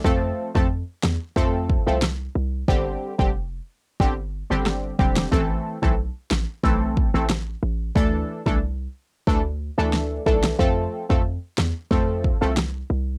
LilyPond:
<<
  \new Staff \with { instrumentName = "Synth stab" } { \time 4/4 \key f \lydian \tempo 4 = 91 <f a c' a'>8. <f a c' a'>16 r4 <f a c' a'>8. <f a c' a'>16 r4 | <d g c' g'>8. <d g c' g'>16 r4 <d g c' g'>16 r8 <d g c' g'>8. <d g c' g'>8 | <e a c' a'>8. <e a c' a'>16 r4 <e a c' a'>8. <e a c' a'>16 r4 | <e a d' a'>8. <e a d' a'>16 r4 <e a d' a'>16 r8 <e a d' a'>8. <e a d' a'>8 |
<f a c' a'>8. <f a c' a'>16 r4 <f a c' a'>8. <f a c' a'>16 r4 | }
  \new Staff \with { instrumentName = "808-style bass" } { \clef bass \time 4/4 \key f \lydian f,8 r16 f,8 r16 e,16 r16 f,8. c,8. c,8 | g,,8 r16 f,,8. r8 g,,8. g,,8. e,,8 | a,,8 r16 b,,8 r16 a,,16 r16 b,,8. a,,8. a,,8 | d,8 r16 c,8. r8 d,8. d,8. b,,8 |
f,8 r16 f,8 r16 e,16 r16 f,8. c,8. c,8 | }
  \new DrumStaff \with { instrumentName = "Drums" } \drummode { \time 4/4 bd8. bd16 r8 <ss sn>8 bd8 bd8 <ss sn>4 | bd8. bd16 r4 bd4 <ss sn>8 bd16 <ss sn>16 | bd8. bd16 r8 <ss sn>8 bd8 bd8 <ss sn>4 | bd8. bd16 r4 bd4 sn8 bd16 <ss sn>16 |
bd8. bd16 r8 <ss sn>8 bd8 bd8 <ss sn>4 | }
>>